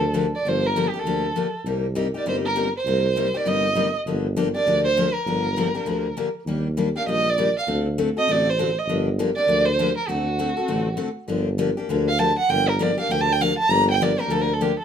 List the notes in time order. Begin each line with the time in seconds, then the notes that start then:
Already playing: D2 A4
0.14 D3 F3 A#3 D4 G4
0.36 D5
0.44 G1 D3 F3 A#3 D4 G4
0.48 C5
0.67 A#4
0.76 D3 F3 A#3 D4 G4
0.89 G4
0.94 A#3 D4 G4
0.99 A4
1.04 D2 D3 F3 A#3 D4 G4
1.36 D3 F3 A#3 D4 G4
1.64 C2 C3 G3 A#3 D#4 G4
1.95 C3 G3 A#3 D#4 G4
2.14 A#3 D#4 G4 D5
2.25 G1 C3 G3 A#3 D#4 G4
2.29 C5
2.45 A#4
2.56 C3 G3 A#3 D#4 G4
2.77 C5
2.85 C2 C3 G3 A#3 D#4 G4
3.16 C3 G3 A#3 D#4 G4
3.34 A#3 D#4 G4 D5
3.45 G1 C3 G3 A#3 D#4 G4 D#5
3.75 C3 G3 A#3 D#4 G4
4.06 G1 D3 F3 A#3 D4 G4
4.36 D3 F3 A#3 D4 G4
4.54 A#3 D4 G4 D5
4.66 D2 D3 F3 A#3 D4 G4
4.84 C5
4.97 D3 F3 A#3 D4 G4
5.14 A#4
5.25 G1 D3 F3 A#3 D4 G4
5.56 D3 F3 A#3 D4 G4
5.75 A#3 D4 G4
5.85 D2 D3 F3 A#3 D4 G4
6.17 D3 F3 A#3 D4 G4
6.46 D#2 D#3 G3 A#3 D4 G4
6.77 D#3 G3 A#3 D4 G4
6.96 A#3 D4 G4 F5
7.07 A#1 D#3 G3 A#3 D4 G4 D#5
7.30 D5
7.38 D#3 G3 A#3 D4 G4
7.59 F5
7.67 D2 D3 A3 C4 F#4 A4
7.98 D3 A3 C4 F#4 A4
8.17 C4 F#4 A4 D#5
8.27 A1 D3 A3 C4 F#4 A4
8.32 D5
8.49 C5
8.59 D3 A3 C4 F#4 A4
8.79 D#5
8.86 G1 D3 F3 A#3 D4 G4
9.19 D3 F3 A#3 D4 G4
9.36 A#3 D4 G4 D5
9.47 D2 D3 F3 A#3 D4 G4
9.66 C5
9.79 D3 F3 A#3 D4 G4
9.97 A#4
10.08 D2 D3 A3 C4 F#4 A4
10.39 D3 A3 C4 F#4 A4
10.57 C4 F#4 A4
10.68 A1 D3 A3 C4 F#4 A4
10.97 D3 A3 C4 F#4 A4
11.28 G1 D3 F3 A#3 D4 G4
11.58 D3 F3 A#3 D4 G4
11.77 A#3 D4 G4
11.89 D2 D3 F3 A#3 D4 G4
12.08 F5
12.18 D3 F3 A#3 D4 G4 A5
12.39 F#5
12.49 G1 D3 F3 A#3 D4 G4 G5
12.69 A#4
12.79 D3 F3 A#3 D4 G4 D5
12.98 A#3 D4 G4 F5
13.09 D2 D3 F3 A#3 D4 G4 G5
13.21 A5
13.32 G5
13.41 D3 F3 A#3 D4 G4 F5
13.59 A5
13.68 G1 D3 F3 A#3 D4 G4 A#5
13.91 G5
14.01 D3 F3 A#3 D4 G4 D5
14.18 A#3 D4 G4 A#4
14.28 D2 D3 F3 A#3 D4 G4 A4
14.42 A#4
14.53 A4
14.61 D3 F3 A#3 D4 G4
14.79 A4